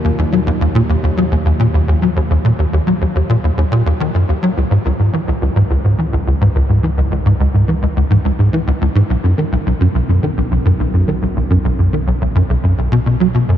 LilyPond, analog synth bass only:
\new Staff \with { instrumentName = "Analog synth bass" } { \clef bass \time 4/4 \key des \dorian \tempo 4 = 106 ees,16 ees,16 ges16 ees,16 ees,16 bes,16 ees,16 ees,16 ges16 ees,16 ees,16 bes,16 ees,16 ees,16 ges16 ees,16 | ees,16 bes,16 ees,16 ees,16 ges16 ees,16 ees,16 bes,16 ees,16 ees,16 bes,16 ees,16 ees16 ges,16 ees,16 ges16 | des,16 aes,16 des,16 aes,16 fes16 des,16 des,16 aes,16 des,16 aes,16 fes16 des,16 des,16 aes,16 des,16 aes,16 | fes16 des,16 des,16 aes,16 des,16 aes,16 fes16 des,16 des,16 aes,16 des,16 aes,16 fes16 des,16 des,16 aes,16 |
b,,16 fis,16 dis16 b,,16 b,,16 fis,16 b,,16 fis,16 dis16 b,,16 b,,16 fis,16 b,,16 fis,16 dis16 b,,16 | b,,16 fis,16 b,,16 fis,16 dis16 b,,16 b,,16 fis,16 b,,16 fis,16 b,,16 b,16 b,16 fis16 b,16 fis,16 | }